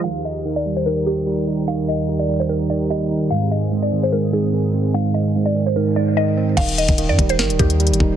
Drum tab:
CC |------------------------------------------------|------------------------------------------------|------------------------------------------------|------------------------------------------------|
HH |------------------------------------------------|------------------------------------------------|------------------------------------------------|------------------------------------------------|
SD |------------------------------------------------|------------------------------------------------|------------------------------------------------|------------------------------------------------|
BD |------------------------------------------------|------------------------------------------------|------------------------------------------------|------------------------------------------------|

CC |x-----------------------------------------------|
HH |x--x--x--x--x-----x--x--x--x--x--x--x-x-x-------|
SD |------------------------o-----------------------|
BD |o--------o--------o-----------o-----------o-----|